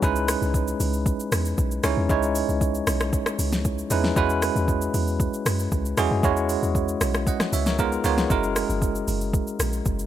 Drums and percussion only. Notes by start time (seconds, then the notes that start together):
0.03 kick, shaker
0.16 shaker
0.28 cross-stick, open hi-hat, shaker
0.42 shaker
0.54 kick, shaker
0.68 shaker
0.80 open hi-hat, shaker
0.93 shaker
1.06 kick, shaker
1.20 shaker
1.32 cross-stick, open hi-hat, shaker
1.45 shaker
1.58 kick, shaker
1.71 shaker
1.83 cross-stick, open hi-hat, shaker
2.09 kick, shaker
2.23 shaker
2.35 open hi-hat, shaker
2.49 shaker
2.61 kick, shaker
2.75 shaker
2.87 cross-stick, open hi-hat, shaker
3.00 cross-stick, shaker
3.13 kick, shaker
3.26 cross-stick, shaker
3.39 open hi-hat, shaker
3.52 snare, shaker
3.65 kick, shaker
3.78 shaker
3.90 open hi-hat, shaker
4.04 snare
4.16 kick, shaker
4.30 shaker
4.42 cross-stick, open hi-hat, shaker
4.56 shaker
4.68 kick, shaker
4.82 shaker
4.94 open hi-hat, shaker
5.07 shaker
5.20 kick, shaker
5.34 shaker
5.46 cross-stick, open hi-hat, shaker
5.59 shaker
5.72 kick, shaker
5.85 shaker
5.97 cross-stick, open hi-hat, shaker
6.23 kick, shaker
6.37 shaker
6.49 open hi-hat, shaker
6.63 shaker
6.75 kick, shaker
6.88 shaker
7.01 cross-stick, open hi-hat, shaker
7.14 cross-stick, shaker
7.27 kick, shaker
7.40 cross-stick, snare, shaker
7.53 open hi-hat, shaker
7.66 snare, shaker
7.79 kick, shaker
7.92 shaker
8.04 open hi-hat, shaker
8.18 snare, shaker
8.30 kick, shaker
8.43 shaker
8.56 cross-stick, open hi-hat, shaker
8.70 shaker
8.82 kick, shaker
8.95 shaker
9.08 open hi-hat, shaker
9.21 shaker
9.34 kick, shaker
9.47 shaker
9.60 cross-stick, open hi-hat, shaker
9.73 shaker
9.85 kick, shaker
9.99 shaker